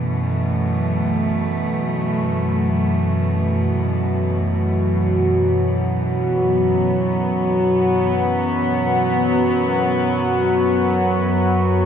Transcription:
0.00 11.27 F#2 medium
0.00 11.85 F#2 medium
0.00 11.26 B2 medium
0.00 11.28 E3 medium
0.00 11.85 F#3 medium
0.00 6.44 A3 medium
6.18 11.85 B3 medium
11.29 11.85 F#2 medium

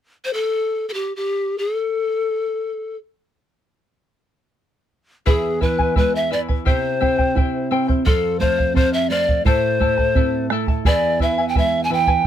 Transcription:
0.25 0.35 C5 medium
0.33 0.88 A4 medium
0.89 0.95 A4 soft
0.94 1.15 G4 medium
1.16 1.60 G4 medium
1.58 2.96 A4 medium
5.26 6.63 E2 medium
5.26 5.60 E4 medium
5.26 5.61 G#4 medium
5.26 5.64 G#4 medium
5.26 5.60 B4 medium
5.26 5.60 E5 medium
5.26 5.61 G#5 medium
5.26 bombo low medium
5.61 5.96 E3 soft
5.61 5.79 E4 medium
5.61 5.78 B4 soft
5.61 5.97 B4 medium
5.61 5.79 E5 soft
5.61 5.77 G#5 medium
5.61 bombo low soft
5.79 5.95 E4 soft
5.79 5.95 B4 soft
5.79 5.96 G#5 soft
5.79 bombo low soft
5.96 6.31 G#3 soft
5.96 6.30 E4 soft
5.96 6.30 B4 soft
5.96 6.17 B4 medium
5.96 6.29 E5 soft
5.96 6.31 G#5 medium
5.96 bombo low medium
6.15 6.32 E5 medium
6.31 6.66 E3 soft
6.31 6.49 E4 medium
6.31 6.48 B4 medium
6.31 6.40 D5 medium
6.31 6.48 E5 soft
6.31 6.47 G#5 medium
6.49 6.65 E4 soft
6.49 6.66 B4 soft
6.49 6.66 G#5 soft
6.49 bombo low medium
6.65 8.02 C3 medium
6.65 7.00 E4 medium
6.65 7.01 G4 medium
6.65 7.01 C5 medium
6.65 7.68 C5 medium
6.65 6.99 E5 medium
6.65 7.01 G5 medium
6.65 bombo low medium
7.01 7.35 C4 soft
7.01 7.19 E4 soft
7.01 7.18 C5 medium
7.01 7.18 E5 medium
7.01 7.17 G5 medium
7.01 bombo low soft
7.18 7.36 E4 soft
7.18 7.36 C5 soft
7.18 7.36 G5 soft
7.18 bombo low soft
7.35 7.69 E4 soft
7.35 7.70 E4 soft
7.35 7.70 C5 medium
7.35 7.70 E5 medium
7.35 7.71 G5 medium
7.35 bombo low medium
7.71 8.05 C4 soft
7.71 7.88 E4 medium
7.71 7.88 C5 medium
7.71 7.88 E5 medium
7.71 7.87 G5 medium
7.88 8.07 E4 soft
7.88 8.05 C5 soft
7.88 8.06 G5 soft
7.88 bombo low medium
8.05 9.41 F2 medium
8.05 8.40 A4 medium
8.05 8.41 A4 medium
8.05 8.40 C5 medium
8.05 8.41 F5 medium
8.05 bombo low medium
8.39 8.74 A3 soft
8.39 8.58 A4 soft
8.39 8.75 C5 medium
8.39 8.58 C5 medium
8.39 8.57 F5 medium
8.39 bombo low soft
8.58 8.75 C5 soft
8.58 8.75 F5 soft
8.58 bombo low soft
8.74 9.08 C4 soft
8.74 9.10 A4 soft
8.74 9.10 C5 medium
8.74 8.92 C5 medium
8.74 9.11 F5 medium
8.74 bombo low medium
8.93 9.11 E5 medium
9.10 9.44 A3 soft
9.10 9.28 A4 soft
9.10 9.28 C5 medium
9.10 9.45 D5 medium
9.10 9.27 F5 medium
9.28 9.44 C5 soft
9.28 9.45 F5 soft
9.28 bombo low medium
9.45 10.81 A2 medium
9.45 9.79 E4 medium
9.45 9.80 A4 medium
9.45 10.46 C5 medium
9.45 9.80 C5 medium
9.45 9.79 E5 medium
9.45 9.80 A5 medium
9.45 bombo low medium
9.80 10.14 A3 soft
9.80 9.98 E4 medium
9.80 9.97 A4 medium
9.80 9.98 E5 soft
9.80 9.96 A5 medium
9.80 bombo low soft
9.98 10.15 E4 soft
9.98 10.15 A4 soft
9.98 10.15 A5 soft
9.98 bombo low soft
10.15 10.49 C4 soft
10.15 10.51 E4 soft
10.15 10.51 A4 medium
10.15 10.50 E5 medium
10.15 10.51 A5 medium
10.15 bombo low medium
10.50 10.84 A3 soft
10.50 10.68 E4 medium
10.50 10.68 A4 medium
10.50 10.68 E5 medium
10.50 10.67 A5 medium
10.50 bombo rim soft
10.68 10.85 E4 soft
10.68 10.86 A4 soft
10.68 10.85 A5 soft
10.68 bombo low medium
10.85 12.21 E2 medium
10.85 11.20 E4 medium
10.85 11.20 G#4 medium
10.85 11.20 B4 medium
10.85 11.24 D5 medium
10.85 11.19 E5 medium
10.85 11.21 G#5 medium
10.85 bombo low medium
11.20 11.54 E3 soft
11.20 11.38 E4 medium
11.20 11.38 B4 medium
11.20 11.37 E5 soft
11.20 11.48 E5 medium
11.20 11.37 G#5 medium
11.20 bombo low soft
11.38 11.55 E4 soft
11.38 11.56 B4 soft
11.38 11.55 G#5 soft
11.49 11.59 G5 medium
11.55 11.89 G#3 soft
11.55 11.89 E4 soft
11.55 11.90 B4 soft
11.55 11.89 E5 soft
11.55 11.83 E5 medium
11.55 11.90 G#5 soft
11.55 bombo low medium
11.84 11.95 G#5 medium
11.90 12.24 E3 soft
11.90 12.07 E4 medium
11.90 12.07 B4 medium
11.90 12.07 E5 medium
11.90 12.26 G5 medium
11.90 12.06 G#5 medium
12.07 12.24 E4 soft
12.07 12.25 B4 soft
12.07 12.25 G#5 soft
12.07 bombo low medium

